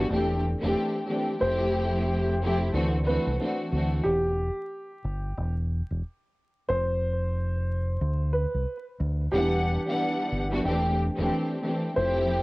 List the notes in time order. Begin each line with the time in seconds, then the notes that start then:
Already playing: G4
0.08 E1 E3 A3 C4 D4 G4
0.61 E1 E3 A3 C4 D4 G4
1.07 E3 A3 C4 D4 G4
1.38 F1 F3 A3 C4 E4 G4 C5
2.40 F3 A3 C4 E4 G4
2.72 D2 E3 A3 C4 D4 F#4
3.04 E3 A3 C4 D4 F#4 B4
3.27 C2
3.39 E3 A3 C4 D4 F#4
3.71 D2 E3 A3 C4 D4 F#4
4.04 E1 G4
5.04 G1
5.37 E1
5.90 E1
6.69 F1 C5
8.01 D2
8.33 B4
8.54 C2
9.00 D2
9.32 E1 E3 G3 B3 D4 G4 F#5
9.86 E3 G3 B3 D4 F#5
10.32 G1
10.50 E3 G3 B3 D4 F#4
10.63 E1 E3 A3 C4 D4 G4
11.16 E1 E3 A3 C4 D4 G4
11.62 E3 A3 C4 D4 G4
11.93 F1 F3 A3 C4 E4 G4 C5